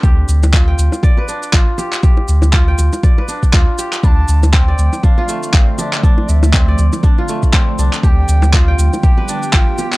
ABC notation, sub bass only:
X:1
M:4/4
L:1/8
Q:"Swing 16ths" 1/4=120
K:Gmix
V:1 name="Sub bass" clef=bass
D,, D,,2 D,, z2 A,,, z | z D,,2 D,, z2 D,, z | D,, D,,2 D,, z2 A,,, z | z D,,2 D,, z3 C,, |
D,, D,,2 D,, z2 A,,, z |]